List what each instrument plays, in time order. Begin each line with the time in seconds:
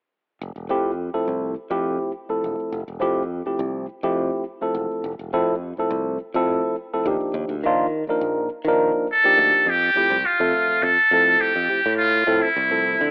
0.41 fingered electric bass F1
0.56 fingered electric bass E1
0.69 fingered electric bass F2, tine electric piano F3 A3 C4 E4 G4
1.00 tine electric piano E4 A4
1.14 tine electric piano F3 A3 C4 E4 A4, muted fingered electric bass stroke
1.28 fingered electric bass C2
1.56 muted fingered electric bass stroke
1.70 fingered electric bass F2, tine electric piano F3 A3 C4 E4 G4
2.29 tine electric piano F3 A3 C4 E4 A4
2.44 fingered electric bass E1
2.60 muted fingered electric bass stroke
2.72 fingered electric bass F1
2.88 fingered electric bass E1
3.00 fingered electric bass F2, tine electric piano F3 A3 C4 E4 G4
3.30 tine electric piano E4 A4
3.46 tine electric piano F3 A3 C4 E4 G4, muted fingered electric bass stroke
3.59 fingered electric bass C2
3.89 muted fingered electric bass stroke
4.03 fingered electric bass F2, tine electric piano F3 A3 C4 E4 G4
4.61 tine electric piano F3 A3 C4 E4 A4
4.75 fingered electric bass E1
4.91 muted fingered electric bass stroke
5.04 fingered electric bass F1
5.19 fingered electric bass E1
5.33 fingered electric bass F2, tine electric piano F3 A3 C4 E4 A4
5.62 tine electric piano E4 G4
5.77 tine electric piano F3 A3 C4 E4 A4, muted fingered electric bass stroke
5.91 fingered electric bass C2
6.20 muted fingered electric bass stroke
6.34 fingered electric bass F2, tine electric piano F3 A3 C4 E4 A4
6.93 tine electric piano F3 A3 C4 E4 A4
7.06 fingered electric bass D#2, tine electric piano F3 A#3 D4 D#4 G4
7.21 muted fingered electric bass stroke
7.34 fingered electric bass D#2
7.49 fingered electric bass D2
7.64 fingered electric bass D#3, tine electric piano F3 A#3 D4 D#4 F4
7.94 tine electric piano D#4 G4
8.07 tine electric piano F3 A#3 D4 D#4 A#4, muted fingered electric bass stroke
8.21 fingered electric bass A#1
8.50 muted fingered electric bass stroke
8.65 fingered electric bass D#3, tine electric piano F3 A#3 D4 D#4 A#4
9.12 muted trumpet A4
9.24 tine electric piano F3 A#3 D4 D#4 G4
9.38 fingered electric bass D2
9.53 muted fingered electric bass stroke
9.66 fingered electric bass F2, muted trumpet G4
9.94 tine electric piano F3 A3 C4 E4 G4, muted fingered electric bass stroke
10.10 fingered electric bass C2
10.25 tine electric piano E4 G4, muted trumpet F4, muted fingered electric bass stroke
10.40 fingered electric bass F2, tine electric piano F3 A3 C4 A4 E5
10.68 muted fingered electric bass stroke
10.83 fingered electric bass F2, muted trumpet A4
11.11 fingered electric bass F2, tine electric piano F3 A3 C4 E4 A4
11.41 muted trumpet G4, muted fingered electric bass stroke
11.56 fingered electric bass F2
11.69 tine electric piano F3 A3 C4 E4 G4
11.86 fingered electric bass A2, tine electric piano E4 G4
11.97 muted trumpet F4
12.27 fingered electric bass A2, tine electric piano F3 A3 C4 E4 A4
12.42 muted trumpet E4
12.56 fingered electric bass C2, tine electric piano E4 A4
12.71 tine electric piano F3 A3 C4 E4 A4
13.01 fingered electric bass D3